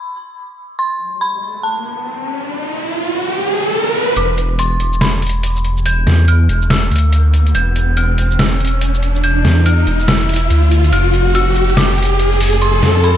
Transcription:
Already playing: B5
0.79 C6, riser
1.21 B5
1.63 A5
4.17 E1 D6, closed hi-hat, riser
4.38 closed hi-hat
4.59 C6, closed hi-hat
4.80 E1, closed hi-hat
4.93 shaker
5.01 B5, snare, closed hi-hat
5.22 closed hi-hat
5.27 closed hi-hat
5.29 closed hi-hat
5.43 closed hi-hat
5.56 shaker
5.65 closed hi-hat
5.77 shaker
5.86 G6, closed hi-hat
6.07 E2, snare, closed hi-hat
6.28 F6, closed hi-hat
6.49 E1, closed hi-hat
6.62 shaker
6.70 E6, snare, closed hi-hat
6.83 shaker
6.91 D2, closed hi-hat
6.96 closed hi-hat
6.98 closed hi-hat
7.12 closed hi-hat
7.34 closed hi-hat
7.47 closed hi-hat
7.55 E1 G6, closed hi-hat
7.76 closed hi-hat
7.97 F6, closed hi-hat
8.18 E1, closed hi-hat
8.31 shaker
8.39 E6, snare, closed hi-hat
8.60 closed hi-hat
8.65 closed hi-hat
8.67 closed hi-hat
8.81 closed hi-hat
8.94 shaker
9.03 closed hi-hat
9.15 shaker
9.24 G6, closed hi-hat
9.45 E2, snare, closed hi-hat
9.66 F6, closed hi-hat
9.87 E1, closed hi-hat
10.00 shaker
10.08 E6, snare, closed hi-hat
10.21 shaker
10.29 closed hi-hat
10.34 closed hi-hat
10.36 closed hi-hat
10.50 D2, closed hi-hat
10.71 closed hi-hat
10.84 closed hi-hat
10.93 F1 F6, closed hi-hat
11.14 closed hi-hat
11.35 E6, closed hi-hat
11.56 F1, closed hi-hat
11.69 shaker
11.77 D6, snare, closed hi-hat
11.98 closed hi-hat
12.02 closed hi-hat
12.05 closed hi-hat
12.19 closed hi-hat
12.32 shaker
12.40 open hi-hat
12.53 shaker
12.62 C6, closed hi-hat
12.83 F2, snare, closed hi-hat
13.04 B5, closed hi-hat

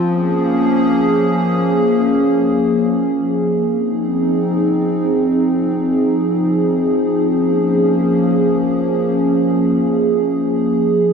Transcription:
Already playing: F3
0.02 A#3 C#4 G#4
3.68 F3 C4 D#4 G#4
7.35 A#3 C#4
11.01 C4 D#4

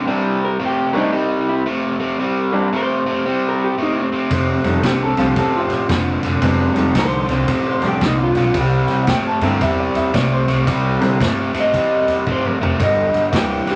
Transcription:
0.06 C3 E3 G3 A#3 C4 D4
0.45 A#4
0.60 C3 A3
0.65 G4
0.93 C3 E3 G3 A3 A#3 C4 D4
0.97 D#4
1.12 C3 G3
1.49 E4
1.66 C3 A3
1.99 C3 A3
2.19 C3 G3
2.52 E3 G3 A#3 C4 D4
2.73 C3 A3 C5
3.06 C3 A3
3.26 C3 G3
3.49 A#4
3.64 G4
3.78 C3 A3
3.82 D#4
4.00 C4
4.12 C3 A3
4.31 F1 F2 C3, kick, snare, ride
4.64 F1 F3 G3 A3 C4 D#4, snare, ride
4.83 C2 F2 D3 G4, kick, snare, ride
5.03 A4
5.17 C2 F2 D3 F3 G3 A3 C4 F4, snare, ride
5.21 G4
5.36 A1 F2 C3 A4, kick, snare, ride
5.56 C4 F4
5.70 A1, snare, ride
5.89 F1 F2 D3, kick, snare, ride
6.23 F1 F2 D3, snare, ride
6.42 F1 F2 C3 E3 F#3 G#3 B3 D4, kick, snare, ride
6.76 F1 F3 G3 A3 C4 D#4, snare, ride
6.95 C2 F2 D3, kick, snare, ride
6.99 C5
7.28 C2 F2 D3, snare, ride
7.48 A1 F2 C3, kick, snare, ride
7.70 C5
7.82 A1 F3 G3 A3 C4 D4, snare, ride
7.87 G4
8.01 C2 F2 D3 D#4, kick, snare, ride
8.22 F4
8.35 B1 F2 D3, snare, ride
8.54 C2 C3 G3, kick, snare, ride
8.88 C2, snare, ride
9.03 F#5, ride
9.07 G2 C3 A3 G5, kick, snare
9.27 A5
9.41 G2 C3 D3 G3 A3 A#3 C4 E4, snare, ride
9.46 G5
9.61 E2 C3 G3 E5, kick, snare, ride
9.79 D5
9.94 E2 E5, snare, ride
10.13 C2 C3 A3 D5, kick, snare, ride
10.33 C5
10.47 C2 C3 A3, snare, ride
10.67 C2 C3 G3, kick, snare, ride
11.00 C2 D3 G3 A#3 C4 E4, snare, ride
11.20 G2 C3 A3, kick, snare, ride
11.53 G2 C3 A3, snare, ride
11.60 D#5
11.73 E2 C3 G3, kick, snare, ride
12.07 E2, snare, ride
12.27 G2 C3 A3, kick
12.32 C5
12.45 A#4, mid tom
12.59 F1 C3 A3, floor tom
12.79 G1 G2 D3 D#5, kick, snare, ride
13.13 G1, snare, ride
13.32 D2 G2 E3, kick, snare, ride
13.37 G4
13.66 D2 G2 E3, snare, ride
13.71 G4

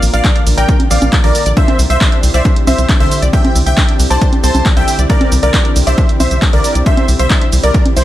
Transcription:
Already playing: D3 A#3 F4 A#4
0.03 A#1, open hi-hat, shaker
0.14 A#1 D5 F5, closed hi-hat, shaker
0.24 D4, kick, clap, closed hi-hat, shaker
0.36 D4, closed hi-hat
0.46 A#1, open hi-hat, shaker
0.57 A#1 A#4 D5 G5, closed hi-hat, shaker
0.69 D4, kick, closed hi-hat, shaker
0.80 closed hi-hat, high conga
0.91 A#1 C4 D5 F5, open hi-hat, shaker
1.02 A#1, closed hi-hat, high conga, shaker
1.13 D4, kick, clap, closed hi-hat, shaker
1.24 A#1 D3 A#4 D5, closed hi-hat
1.35 open hi-hat, shaker
1.46 A#1 D5, closed hi-hat, shaker
1.57 D3 C4 D4 E4 G4 C5 E5, kick, closed hi-hat, shaker
1.68 C4, closed hi-hat, high conga
1.79 C2, open hi-hat, shaker
1.90 C2 C5 E5, closed hi-hat, shaker
2.01 D4, kick, clap, closed hi-hat, shaker
2.12 D4, closed hi-hat
2.23 C2, open hi-hat, shaker
2.34 C2 C5 D5 E5, closed hi-hat, shaker
2.45 D4, kick, closed hi-hat, shaker
2.56 closed hi-hat
2.67 C2 C4 C5 E5, open hi-hat, high conga, shaker
2.78 C2, closed hi-hat, shaker
2.89 D4, kick, clap, closed hi-hat, shaker
3.00 C2 D3 C5 E5, closed hi-hat
3.11 open hi-hat, shaker
3.22 C2 D5, closed hi-hat, shaker
3.33 D4 E5 G5, kick, closed hi-hat, shaker
3.44 C4, closed hi-hat, high conga
3.56 C2, open hi-hat, shaker
3.66 C2 E5 G5, closed hi-hat, shaker
3.77 D4, kick, clap, closed hi-hat, shaker
3.89 D4, closed hi-hat
3.99 C2, open hi-hat, shaker
4.10 C2 C5 D5 A5, closed hi-hat, shaker
4.22 D4, kick, closed hi-hat, shaker
4.33 closed hi-hat, high conga
4.44 C2 C4 C5 A5, open hi-hat, shaker
4.55 C2, closed hi-hat, high conga, shaker
4.66 D4, kick, clap, closed hi-hat, shaker
4.77 C2 D3 E5 G5, closed hi-hat
4.88 open hi-hat, shaker
4.99 C2 D5, closed hi-hat, shaker
5.10 D4 A#4 D5, kick, closed hi-hat, shaker
5.21 C4, closed hi-hat, high conga
5.32 C2, open hi-hat, shaker
5.43 C2 A#4 D5, closed hi-hat, shaker
5.54 D4, kick, clap, closed hi-hat, shaker
5.65 D4, closed hi-hat
5.76 C2, open hi-hat, shaker
5.87 C2 C5 D5 E5, closed hi-hat, shaker
5.98 D4, kick, closed hi-hat, shaker
6.09 closed hi-hat
6.20 C2 C4 C5 E5, open hi-hat, high conga, shaker
6.31 C2, closed hi-hat, shaker
6.42 D4, kick, clap, closed hi-hat, shaker
6.53 C2 D3 A#4 D5, closed hi-hat
6.64 open hi-hat, shaker
6.75 C2 D5, closed hi-hat, shaker
6.86 D4 C5 E5, kick, closed hi-hat, shaker
6.97 C4, closed hi-hat, high conga
7.08 C2, open hi-hat, shaker
7.19 C2 C5 E5, closed hi-hat, shaker
7.30 D4, kick, clap, closed hi-hat, shaker
7.41 D4, closed hi-hat
7.52 C2, open hi-hat, shaker
7.63 C2 A#4 D5, closed hi-hat, shaker
7.74 D4, kick, closed hi-hat, shaker
7.86 closed hi-hat, high conga
7.96 C2 C4 E4 C5, open hi-hat, shaker

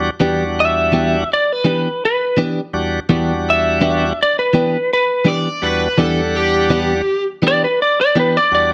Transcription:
Already playing: E2 G3 D4 F#4
0.20 E2 E3 G3 B3 D4 F#4 G4
0.60 E5
0.92 E3 B3 D4 G4
1.33 D5
1.52 B4
1.64 E3 B3 D4 G4
2.05 B4
2.37 E3 B3 D4 G4
2.73 E2 G3 D4 F#4
3.09 E2 E3 G3 B3 D4 F#4 G4
3.50 E5
3.81 E3 B3 D4 G4
4.23 D5
4.39 B4
4.53 E3 B3 D4 G4
4.93 B4
5.25 E3 B3 D4 G4 D5
5.62 E2 G3 D4 F#4 B4
5.98 E2 E3 G3 B3 D4 G4 A4 F#5
6.36 G4
6.70 E3 B3 D4 G4
7.42 E3 B3 D4 G4
7.48 D5
7.64 B4
7.82 D5
8.01 D5
8.15 E3 B3 D4 G4
8.19 B4
8.37 D5
8.51 E2 G3 D4 F#4 D5

